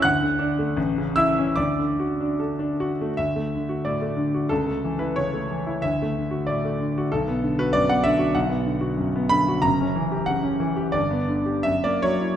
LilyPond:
<<
  \new Staff \with { instrumentName = "Grand piano" } { \time 2/4 \key d \major \tempo 4 = 91 <fis'' fis'''>4. <e'' e'''>8 | <d'' d'''>4 r4 | e''4 d''4 | a'8. b'16 cis''4 |
e''4 d''4 | a'8. b'16 d''16 fis''16 e''8 | \key b \minor fis''4. b''8 | ais''4 fis''8 r8 |
d''4 e''16 d''16 cis''8 | }
  \new Staff \with { instrumentName = "Grand piano" } { \time 2/4 \key d \major d,16 d16 d'16 a16 a,,16 cis16 e'16 cis'16 | d,16 d16 fis'16 d'16 a'16 d'16 fis'16 a16 | d,16 a16 d16 fis'16 a,16 a16 d16 fis'16 | cis,16 a16 e16 e'16 cis16 a16 e16 e'16 |
d,16 a16 d16 fis'16 a,16 a16 d16 fis'16 | b,,16 b16 d16 fis'16 fis,16 b16 d16 fis'16 | \key b \minor b,,16 b16 d16 fis'16 fis,16 b16 d16 fis'16 | <fis,, fis,>16 cis'16 e16 g'16 cis16 cis'16 e16 g'16 |
<g,, g,>16 b16 d16 g'16 fis,16 ais16 fis16 e'16 | }
>>